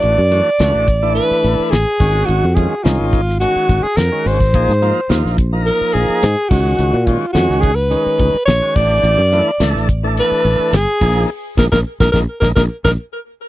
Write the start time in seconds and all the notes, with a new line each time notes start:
Already playing: E3 A3 D4 F#4 D5
0.02 A1, closed hi-hat
0.18 F#2
0.31 E3 A3 D4 F#4, closed hi-hat
0.59 C#2 E3 A3 D4 F#4, snare, closed hi-hat
0.74 A1
0.88 kick, closed hi-hat
1.02 E3 A3 D4 E4
1.15 B4, closed hi-hat
1.31 muted fretless electric bass stroke
1.44 A1, closed hi-hat
1.71 A1 G#4, snare, closed hi-hat
2.00 G#1 D#3 G#3 C#4 F#4, kick, open hi-hat
2.26 G#1 F#4, closed hi-hat
2.44 F2
2.55 D#3 G#3 C#4 F4 G#4, kick, closed hi-hat
2.83 C2 D#3 G#3 C#4 D#4 F4, snare, closed hi-hat
3.00 G#1
3.13 kick, closed hi-hat
3.29 snare
3.40 D#3 G#3 C#4 F#4, closed hi-hat
3.56 muted fretless electric bass stroke
3.69 G#1, kick, closed hi-hat
3.83 G#4, muted fretless electric bass stroke
3.97 F2 A#4, snare, closed hi-hat
4.12 D#3 G#3 C#4 F#4
4.26 G#1 C5, open hi-hat
4.40 kick
4.54 A#1 F3 A#3 D#4 G#4, kick, closed hi-hat
4.69 G#2, snare
4.82 F3 A#3 D#4 F4, closed hi-hat
5.09 D#2 F3 A#3 D#4 F4, snare, closed hi-hat
5.25 A#1, snare
5.38 kick, closed hi-hat
5.52 F3 A#3 D#4 A#4
5.66 A#4, closed hi-hat
5.81 muted fretless electric bass stroke
5.94 A#1 G#4, closed hi-hat
6.10 muted fretless electric bass stroke
6.23 G#2, snare, closed hi-hat
6.49 C#2 D#3 G#3 C#4 F#4, kick, open hi-hat
6.79 C#2, closed hi-hat
6.93 A#2
7.06 D#3 G#3 C#4 F4 F#4, kick, closed hi-hat
7.32 F2 D#3 G#3 C#4 F#4, snare, closed hi-hat
7.49 C#2, snare
7.60 G#4, kick, closed hi-hat
7.75 B4
7.90 D#3 G#3 C#4 D#4, closed hi-hat
8.06 muted fretless electric bass stroke
8.19 C#2, kick, closed hi-hat
8.34 muted fretless electric bass stroke
8.46 A#1 C#5, snare, closed hi-hat
8.61 D#3 G#3 C#4 F#4
8.75 A1 E3 A3 D4 G4 D5, kick, open hi-hat
9.03 A1, closed hi-hat
9.18 F#2
9.32 E3 A3 D4 E4, closed hi-hat
9.60 C#2 E3 A3 D4 A4, snare, closed hi-hat
9.75 A1, snare
9.89 kick, closed hi-hat
10.03 E3 A3 D4 A4
10.17 B4, closed hi-hat
10.32 muted fretless electric bass stroke
10.45 A1, closed hi-hat
10.59 muted fretless electric bass stroke
10.73 G1 G#4, snare, closed hi-hat
11.01 A#1 F3 A#3 D#4 G#4, kick, open hi-hat
11.57 A#1 G#3 A#3 D#4 A#4, kick, snare
11.72 A#1 G#3 A#3 D#4 A#4, kick, snare
12.00 A#1 G#3 A#3 D#4 A#4, kick, snare
12.12 A#1 G#3 A#3 D#4 A#4, kick, snare
12.40 A#1 G#3 A#3 D#4 A#4, kick, snare
12.55 A#1 G#3 A#3 D#4 A#4, kick, snare
12.84 A#1 G#3 A#3 D#4 A#4, kick, snare